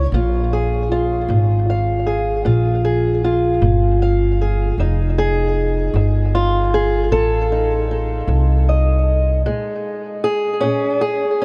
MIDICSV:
0, 0, Header, 1, 3, 480
1, 0, Start_track
1, 0, Tempo, 778715
1, 68, Time_signature, 12, 3, 24, 8
1, 7057, End_track
2, 0, Start_track
2, 0, Title_t, "Steel-string acoustic guitar"
2, 0, Program_c, 0, 25
2, 0, Note_on_c, 0, 67, 86
2, 69, Note_off_c, 0, 67, 0
2, 85, Note_on_c, 0, 46, 73
2, 88, Note_on_c, 0, 65, 54
2, 327, Note_on_c, 0, 68, 54
2, 509, Note_off_c, 0, 46, 0
2, 562, Note_off_c, 0, 65, 0
2, 565, Note_on_c, 0, 65, 56
2, 799, Note_on_c, 0, 46, 72
2, 1046, Note_on_c, 0, 77, 54
2, 1226, Note_off_c, 0, 46, 0
2, 1265, Note_off_c, 0, 68, 0
2, 1273, Note_on_c, 0, 68, 56
2, 1509, Note_on_c, 0, 46, 63
2, 1512, Note_off_c, 0, 65, 0
2, 1514, Note_on_c, 0, 65, 53
2, 1747, Note_off_c, 0, 68, 0
2, 1754, Note_on_c, 0, 68, 57
2, 1940, Note_off_c, 0, 46, 0
2, 1997, Note_off_c, 0, 65, 0
2, 2000, Note_on_c, 0, 65, 57
2, 2231, Note_on_c, 0, 46, 66
2, 2476, Note_off_c, 0, 77, 0
2, 2479, Note_on_c, 0, 77, 56
2, 2662, Note_off_c, 0, 46, 0
2, 2711, Note_off_c, 0, 68, 0
2, 2721, Note_on_c, 0, 68, 55
2, 2925, Note_off_c, 0, 68, 0
2, 2956, Note_on_c, 0, 41, 71
2, 2957, Note_off_c, 0, 65, 0
2, 2960, Note_on_c, 0, 63, 45
2, 2977, Note_off_c, 0, 77, 0
2, 3195, Note_on_c, 0, 68, 91
2, 3384, Note_off_c, 0, 41, 0
2, 3671, Note_on_c, 0, 41, 69
2, 3911, Note_off_c, 0, 68, 0
2, 3913, Note_on_c, 0, 65, 81
2, 4102, Note_off_c, 0, 41, 0
2, 4154, Note_on_c, 0, 68, 76
2, 4386, Note_off_c, 0, 68, 0
2, 4389, Note_on_c, 0, 69, 100
2, 4394, Note_on_c, 0, 41, 65
2, 4628, Note_off_c, 0, 63, 0
2, 4630, Note_off_c, 0, 65, 0
2, 4635, Note_on_c, 0, 63, 40
2, 4823, Note_off_c, 0, 41, 0
2, 4869, Note_off_c, 0, 63, 0
2, 4876, Note_on_c, 0, 63, 40
2, 5107, Note_on_c, 0, 41, 65
2, 5355, Note_on_c, 0, 75, 46
2, 5540, Note_off_c, 0, 41, 0
2, 5803, Note_off_c, 0, 63, 0
2, 5803, Note_off_c, 0, 75, 0
2, 5828, Note_off_c, 0, 69, 0
2, 5830, Note_on_c, 0, 46, 69
2, 5831, Note_on_c, 0, 56, 44
2, 6261, Note_off_c, 0, 46, 0
2, 6311, Note_on_c, 0, 68, 88
2, 6537, Note_on_c, 0, 61, 78
2, 6549, Note_off_c, 0, 68, 0
2, 6552, Note_on_c, 0, 46, 71
2, 6782, Note_off_c, 0, 61, 0
2, 6788, Note_on_c, 0, 68, 84
2, 6982, Note_off_c, 0, 46, 0
2, 7028, Note_off_c, 0, 68, 0
2, 7037, Note_on_c, 0, 61, 75
2, 7057, Note_off_c, 0, 56, 0
2, 7057, Note_off_c, 0, 61, 0
2, 7057, End_track
3, 0, Start_track
3, 0, Title_t, "Upright bass"
3, 0, Program_c, 1, 32
3, 74, Note_on_c, 1, 34, 80
3, 769, Note_off_c, 1, 34, 0
3, 792, Note_on_c, 1, 32, 86
3, 1488, Note_off_c, 1, 32, 0
3, 1512, Note_on_c, 1, 34, 80
3, 2208, Note_off_c, 1, 34, 0
3, 2228, Note_on_c, 1, 31, 82
3, 2926, Note_off_c, 1, 31, 0
3, 2945, Note_on_c, 1, 29, 75
3, 3645, Note_off_c, 1, 29, 0
3, 3659, Note_on_c, 1, 31, 82
3, 4362, Note_off_c, 1, 31, 0
3, 4382, Note_on_c, 1, 33, 73
3, 5084, Note_off_c, 1, 33, 0
3, 5101, Note_on_c, 1, 36, 86
3, 5803, Note_off_c, 1, 36, 0
3, 7057, End_track
0, 0, End_of_file